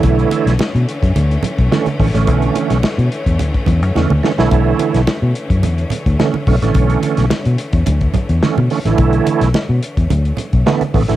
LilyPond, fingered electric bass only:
\new Staff \with { instrumentName = "Fingered electric bass" } { \clef bass \time 4/4 \key b \minor \tempo 4 = 107 b,,8 r16 b,,16 r16 b,16 r16 fis,16 d,8 r16 b,,16 r8 a,,16 a,,16 | b,,8 r16 b,,16 r16 b,16 r16 e,16 d,16 r16 e,16 fis,16 e,16 d,16 r16 b,,16 | b,,8 r16 b,,16 r16 b,16 r16 fis,16 e,8 r16 d,16 r8 b,,16 a,,16 | b,,8 r16 b,,16 r16 b,16 r16 e,16 d,8 r16 e,16 r16 b,16 r16 a,,16 |
b,,8 r16 b,,16 r16 b,16 r16 e,16 d,8 r16 b,,16 r8 a,,16 a,,16 | }